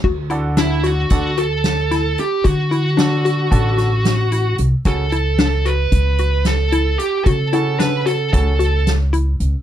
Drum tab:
CC |x--------|---------|---------|---------|
HH |-xxxxxxxx|xxxxxxxxx|xxxxxxxxx|xxxxxxxxx|
SD |--o-o-oo-|--o--oo--|--o---o--|--o---o--|
BD |o---o----|o---o----|o---o----|o---o----|